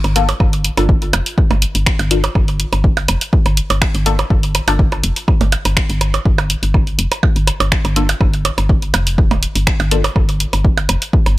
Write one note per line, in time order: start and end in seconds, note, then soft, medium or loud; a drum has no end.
0.04 0.33 G1 loud
0.04 closed hi-hat soft
0.04 percussion blips soft
0.16 0.27 A#3 medium
0.16 0.27 D4 medium
0.16 0.27 F4 medium
0.16 0.27 A4 medium
0.16 closed hi-hat loud
0.29 closed hi-hat medium
0.29 percussion blips medium
0.40 0.70 G1 loud
0.40 kick loud
0.40 percussion blips soft
0.53 closed hi-hat soft
0.65 closed hi-hat medium
0.77 1.07 G1 medium
0.77 0.88 A#3 medium
0.77 0.88 D4 medium
0.77 0.88 F4 medium
0.77 0.88 A4 loud
0.77 closed hi-hat medium
0.77 percussion blips soft
0.89 kick loud
1.02 closed hi-hat soft
1.13 1.21 F1 medium
1.13 closed hi-hat loud
1.13 percussion blips medium
1.13 percussion blips soft
1.26 closed hi-hat soft
1.38 kick loud
1.51 1.66 G1 medium
1.51 closed hi-hat soft
1.51 percussion blips medium
1.51 percussion blips soft
1.62 closed hi-hat loud
1.75 1.90 G1 medium
1.75 closed hi-hat soft
1.86 finger snap loud
1.86 kick loud
1.86 percussion blips soft
1.99 2.28 G1 loud
1.99 closed hi-hat soft
1.99 percussion blips medium
2.11 2.18 A#3 medium
2.11 2.18 D4 medium
2.11 2.18 F4 medium
2.11 2.18 A4 medium
2.11 closed hi-hat medium
2.24 closed hi-hat medium
2.24 percussion blips medium
2.24 percussion blips soft
2.35 2.65 G1 loud
2.35 kick loud
2.35 percussion blips soft
2.48 closed hi-hat soft
2.60 closed hi-hat medium
2.73 3.02 G1 medium
2.73 closed hi-hat medium
2.73 percussion blips soft
2.84 kick loud
2.97 closed hi-hat soft
2.97 percussion blips medium
3.08 3.17 F1 medium
3.08 closed hi-hat medium
3.08 percussion blips soft
3.21 closed hi-hat medium
3.33 kick loud
3.46 3.61 G1 medium
3.46 closed hi-hat soft
3.46 percussion blips soft
3.57 closed hi-hat medium
3.70 3.85 G1 medium
3.70 closed hi-hat soft
3.70 percussion blips medium
3.82 finger snap loud
3.82 kick loud
3.82 percussion blips medium
3.82 percussion blips soft
3.94 4.24 G1 loud
3.94 closed hi-hat soft
4.06 4.18 A#3 medium
4.06 4.18 D4 medium
4.06 4.18 F4 medium
4.06 4.18 A4 medium
4.06 closed hi-hat medium
4.19 closed hi-hat medium
4.19 percussion blips medium
4.19 percussion blips soft
4.30 4.60 G1 loud
4.30 kick loud
4.43 closed hi-hat soft
4.55 closed hi-hat medium
4.55 percussion blips soft
4.68 4.97 G1 medium
4.68 4.78 A#3 medium
4.68 4.78 D4 medium
4.68 4.78 F4 medium
4.68 4.78 A4 loud
4.68 closed hi-hat medium
4.68 percussion blips medium
4.79 kick loud
4.92 closed hi-hat soft
4.92 percussion blips soft
5.04 5.12 F1 medium
5.04 closed hi-hat loud
5.16 closed hi-hat medium
5.28 kick loud
5.28 percussion blips soft
5.41 5.56 G1 medium
5.41 closed hi-hat soft
5.41 percussion blips medium
5.52 closed hi-hat medium
5.52 percussion blips medium
5.65 5.80 G1 medium
5.65 closed hi-hat medium
5.65 percussion blips soft
5.77 finger snap loud
5.77 kick loud
5.89 6.19 G1 loud
5.89 closed hi-hat soft
6.01 closed hi-hat medium
6.01 percussion blips soft
6.14 closed hi-hat medium
6.14 percussion blips medium
6.25 6.55 G1 loud
6.25 kick loud
6.38 closed hi-hat soft
6.38 percussion blips medium
6.38 percussion blips soft
6.50 closed hi-hat medium
6.63 6.92 G1 medium
6.63 closed hi-hat medium
6.74 kick loud
6.74 percussion blips soft
6.87 closed hi-hat soft
6.99 7.07 F1 medium
6.99 closed hi-hat medium
7.12 closed hi-hat medium
7.12 percussion blips soft
7.23 kick loud
7.23 percussion blips medium
7.36 7.51 G1 medium
7.36 closed hi-hat soft
7.47 closed hi-hat medium
7.47 percussion blips soft
7.60 7.75 G1 medium
7.60 closed hi-hat medium
7.60 percussion blips medium
7.72 finger snap loud
7.72 kick loud
7.85 8.14 G1 loud
7.85 closed hi-hat soft
7.85 percussion blips soft
7.96 8.08 A#3 medium
7.96 8.08 D4 medium
7.96 8.08 F4 medium
7.96 8.08 A4 medium
7.96 closed hi-hat medium
8.09 closed hi-hat medium
8.09 percussion blips medium
8.21 8.50 G1 loud
8.21 kick loud
8.21 percussion blips soft
8.34 closed hi-hat soft
8.45 closed hi-hat medium
8.45 percussion blips medium
8.58 8.87 G1 medium
8.58 closed hi-hat medium
8.58 percussion blips soft
8.69 kick loud
8.82 closed hi-hat soft
8.94 9.33 F1 medium
8.94 closed hi-hat medium
8.94 percussion blips medium
8.94 percussion blips soft
9.07 closed hi-hat medium
9.18 kick loud
9.31 9.46 D1 medium
9.31 closed hi-hat soft
9.31 percussion blips medium
9.31 percussion blips soft
9.43 closed hi-hat medium
9.55 9.70 G1 medium
9.55 closed hi-hat medium
9.67 finger snap loud
9.67 kick loud
9.67 percussion blips soft
9.80 10.09 G1 loud
9.80 closed hi-hat soft
9.80 percussion blips medium
9.91 9.99 A#3 medium
9.91 9.99 D4 medium
9.91 9.99 F4 medium
9.91 9.99 A4 medium
9.91 closed hi-hat medium
10.04 closed hi-hat medium
10.04 percussion blips medium
10.04 percussion blips soft
10.16 10.45 G1 loud
10.16 kick loud
10.16 percussion blips soft
10.29 closed hi-hat soft
10.40 closed hi-hat medium
10.53 10.82 G1 medium
10.53 closed hi-hat medium
10.53 percussion blips soft
10.65 kick loud
10.78 closed hi-hat soft
10.78 percussion blips medium
10.89 10.97 F1 medium
10.89 closed hi-hat loud
10.89 percussion blips soft
11.02 closed hi-hat medium
11.13 kick loud
11.26 11.38 G1 medium
11.26 closed hi-hat soft
11.26 percussion blips soft